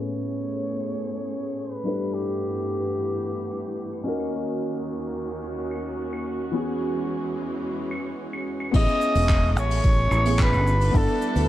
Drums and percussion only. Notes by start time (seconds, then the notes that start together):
1.73 claves
3.51 cabasa, claves
3.66 cabasa
3.79 cabasa
3.92 cabasa, claves
4.20 cabasa, claves
5.71 cabasa, claves
5.85 cabasa
5.99 cabasa
6.13 claves
6.27 cabasa
6.41 cabasa
6.54 cabasa
6.81 cabasa
6.95 cabasa
7.08 cabasa
7.37 cabasa
7.50 cabasa
7.64 cabasa
7.78 cabasa
7.91 cabasa, claves
8.05 cabasa
8.19 cabasa
8.33 cabasa, claves
8.47 cabasa
8.60 cabasa, claves
8.74 kick, open hi-hat, crash, cabasa
8.88 cabasa
9.01 cabasa
9.15 open hi-hat, cabasa
9.29 kick, clap, open hi-hat, cabasa
9.57 cabasa
9.70 open hi-hat, cabasa
9.84 kick, open hi-hat, cabasa
10.11 cabasa, claves
10.26 open hi-hat, cabasa
10.39 kick, clap, cabasa
10.53 cabasa, claves
10.67 cabasa
10.81 open hi-hat, cabasa
10.94 kick, open hi-hat, cabasa
11.08 cabasa
11.22 cabasa
11.36 open hi-hat, cabasa